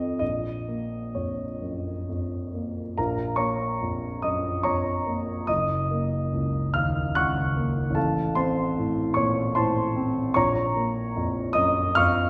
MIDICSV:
0, 0, Header, 1, 2, 480
1, 0, Start_track
1, 0, Key_signature, -5, "minor"
1, 0, Tempo, 938967
1, 105, Time_signature, 3, 2, 24, 8
1, 1064, Tempo, 895522
1, 1544, Tempo, 841515
1, 2504, Tempo, 831025
1, 3944, Tempo, 796813
1, 7043, End_track
2, 0, Start_track
2, 0, Title_t, "Grand piano"
2, 0, Program_c, 0, 0
2, 0, Control_c, 0, 64, 127
2, 0, Note_on_c, 0, 41, 39
2, 0, Note_on_c, 0, 60, 25
2, 0, Note_on_c, 0, 69, 29
2, 0, Note_on_c, 0, 75, 60
2, 89, Note_off_c, 0, 69, 0
2, 91, Note_off_c, 0, 75, 0
2, 92, Note_off_c, 0, 60, 0
2, 96, Note_off_c, 0, 41, 0
2, 99, Note_on_c, 0, 75, 57
2, 108, Note_on_c, 0, 34, 32
2, 116, Control_c, 0, 64, 0
2, 222, Control_c, 0, 64, 127
2, 348, Note_on_c, 0, 58, 29
2, 587, Note_off_c, 0, 75, 0
2, 587, Note_on_c, 0, 73, 40
2, 591, Note_on_c, 0, 41, 24
2, 734, Note_off_c, 0, 58, 0
2, 827, Note_on_c, 0, 42, 23
2, 971, Note_off_c, 0, 41, 0
2, 1062, Note_off_c, 0, 73, 0
2, 1063, Note_off_c, 0, 42, 0
2, 1070, Note_on_c, 0, 41, 27
2, 1310, Note_on_c, 0, 58, 26
2, 1456, Note_off_c, 0, 41, 0
2, 1524, Note_off_c, 0, 34, 0
2, 1543, Note_on_c, 0, 82, 56
2, 1544, Note_off_c, 0, 58, 0
2, 1548, Note_on_c, 0, 70, 44
2, 1548, Note_on_c, 0, 77, 39
2, 1549, Note_on_c, 0, 34, 39
2, 1553, Control_c, 0, 64, 0
2, 1645, Control_c, 0, 64, 127
2, 1760, Note_off_c, 0, 82, 0
2, 1763, Note_on_c, 0, 85, 66
2, 1767, Note_on_c, 0, 58, 33
2, 1768, Note_off_c, 0, 70, 0
2, 1768, Note_off_c, 0, 77, 0
2, 1769, Note_on_c, 0, 73, 45
2, 1769, Note_on_c, 0, 82, 46
2, 2022, Note_on_c, 0, 41, 31
2, 2165, Note_off_c, 0, 58, 0
2, 2240, Note_off_c, 0, 73, 0
2, 2240, Note_off_c, 0, 82, 0
2, 2255, Note_on_c, 0, 87, 61
2, 2260, Note_off_c, 0, 85, 0
2, 2262, Note_on_c, 0, 42, 27
2, 2262, Note_on_c, 0, 75, 51
2, 2410, Note_off_c, 0, 41, 0
2, 2484, Note_off_c, 0, 75, 0
2, 2489, Note_on_c, 0, 85, 66
2, 2493, Note_on_c, 0, 82, 50
2, 2494, Note_on_c, 0, 73, 51
2, 2495, Note_on_c, 0, 41, 33
2, 2498, Note_off_c, 0, 87, 0
2, 2501, Note_off_c, 0, 42, 0
2, 2737, Note_on_c, 0, 58, 33
2, 2874, Note_off_c, 0, 41, 0
2, 2947, Note_off_c, 0, 73, 0
2, 2947, Note_off_c, 0, 82, 0
2, 2955, Note_off_c, 0, 34, 0
2, 2968, Note_off_c, 0, 85, 0
2, 2973, Note_on_c, 0, 87, 64
2, 2976, Note_off_c, 0, 58, 0
2, 2981, Note_on_c, 0, 75, 48
2, 2984, Note_on_c, 0, 30, 41
2, 2987, Control_c, 0, 64, 0
2, 3073, Control_c, 0, 64, 127
2, 3226, Note_on_c, 0, 58, 37
2, 3466, Note_on_c, 0, 37, 31
2, 3615, Note_off_c, 0, 58, 0
2, 3688, Note_off_c, 0, 75, 0
2, 3703, Note_on_c, 0, 89, 74
2, 3707, Note_off_c, 0, 87, 0
2, 3709, Note_on_c, 0, 39, 30
2, 3711, Note_on_c, 0, 77, 54
2, 3850, Note_off_c, 0, 37, 0
2, 3930, Note_off_c, 0, 77, 0
2, 3943, Note_off_c, 0, 89, 0
2, 3944, Note_on_c, 0, 90, 78
2, 3946, Note_off_c, 0, 39, 0
2, 3946, Note_on_c, 0, 78, 58
2, 3948, Note_on_c, 0, 37, 36
2, 3950, Note_on_c, 0, 85, 58
2, 4193, Note_on_c, 0, 58, 38
2, 4335, Note_off_c, 0, 37, 0
2, 4394, Note_on_c, 0, 33, 43
2, 4405, Note_off_c, 0, 78, 0
2, 4408, Note_off_c, 0, 85, 0
2, 4409, Note_off_c, 0, 30, 0
2, 4423, Note_on_c, 0, 81, 66
2, 4426, Note_on_c, 0, 69, 44
2, 4429, Note_off_c, 0, 90, 0
2, 4432, Note_off_c, 0, 58, 0
2, 4433, Note_on_c, 0, 77, 49
2, 4441, Control_c, 0, 64, 0
2, 4547, Control_c, 0, 64, 127
2, 4649, Note_off_c, 0, 69, 0
2, 4653, Note_off_c, 0, 77, 0
2, 4664, Note_off_c, 0, 81, 0
2, 4667, Note_on_c, 0, 84, 74
2, 4670, Note_on_c, 0, 72, 53
2, 4672, Note_on_c, 0, 60, 39
2, 4674, Note_on_c, 0, 81, 54
2, 4926, Note_on_c, 0, 45, 37
2, 5056, Note_off_c, 0, 60, 0
2, 5128, Note_off_c, 0, 72, 0
2, 5130, Note_off_c, 0, 81, 0
2, 5141, Note_on_c, 0, 85, 71
2, 5151, Note_off_c, 0, 84, 0
2, 5153, Note_on_c, 0, 46, 36
2, 5155, Note_on_c, 0, 73, 57
2, 5306, Note_off_c, 0, 45, 0
2, 5379, Note_off_c, 0, 73, 0
2, 5388, Note_off_c, 0, 85, 0
2, 5388, Note_on_c, 0, 84, 72
2, 5393, Note_on_c, 0, 72, 60
2, 5393, Note_on_c, 0, 81, 62
2, 5394, Note_off_c, 0, 46, 0
2, 5395, Note_on_c, 0, 45, 43
2, 5637, Note_on_c, 0, 60, 42
2, 5778, Note_off_c, 0, 45, 0
2, 5832, Note_off_c, 0, 33, 0
2, 5850, Note_off_c, 0, 72, 0
2, 5850, Note_off_c, 0, 81, 0
2, 5866, Note_on_c, 0, 85, 78
2, 5871, Note_off_c, 0, 84, 0
2, 5875, Note_on_c, 0, 73, 57
2, 5876, Note_off_c, 0, 60, 0
2, 5878, Note_on_c, 0, 34, 47
2, 5878, Note_on_c, 0, 82, 64
2, 5883, Control_c, 0, 64, 0
2, 5978, Control_c, 0, 64, 127
2, 6116, Note_on_c, 0, 58, 42
2, 6360, Note_on_c, 0, 41, 41
2, 6494, Note_off_c, 0, 58, 0
2, 6565, Note_off_c, 0, 73, 0
2, 6567, Note_off_c, 0, 82, 0
2, 6581, Note_on_c, 0, 87, 83
2, 6585, Note_off_c, 0, 85, 0
2, 6589, Note_on_c, 0, 75, 62
2, 6592, Note_on_c, 0, 42, 42
2, 6738, Note_off_c, 0, 41, 0
2, 6812, Note_off_c, 0, 75, 0
2, 6825, Note_off_c, 0, 87, 0
2, 6830, Note_off_c, 0, 42, 0
2, 6835, Note_on_c, 0, 89, 93
2, 6839, Note_on_c, 0, 77, 70
2, 6846, Note_on_c, 0, 41, 46
2, 6847, Note_on_c, 0, 85, 65
2, 7043, Note_off_c, 0, 34, 0
2, 7043, Note_off_c, 0, 41, 0
2, 7043, Note_off_c, 0, 77, 0
2, 7043, Note_off_c, 0, 85, 0
2, 7043, Note_off_c, 0, 89, 0
2, 7043, End_track
0, 0, End_of_file